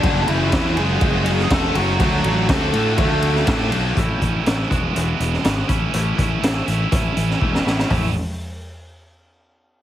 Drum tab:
RD |x-x-x-x-x-x-x-x-|x-x-x-x-x-x-x-x-|----------------|----------------|
HH |----------------|----------------|x-x-x-x-x-x-x-x-|x-x-x-x-x-x-----|
SD |----o------oo---|----o------oo---|----o------oo---|----o------o-ooo|
FT |----------------|----------------|----------------|----------------|
BD |o---o---o---o---|o---o---o---o---|o-o---o-------o-|--o-----o---o---|

RD |----------------|
HH |o---------------|
SD |----------------|
FT |o---------------|
BD |o---------------|